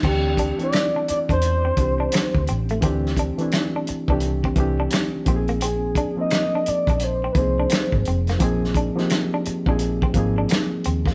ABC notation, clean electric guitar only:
X:1
M:4/4
L:1/16
Q:"Swing 16ths" 1/4=86
K:Dm
V:1 name="Clean electric guitar"
C z D z2 D z D z C z D z2 C A, | C z D z2 D z D z C z D z2 C B, | C z D z2 D z D z C z D z2 C B, | C z D z2 D z D z C z D z2 C B, |]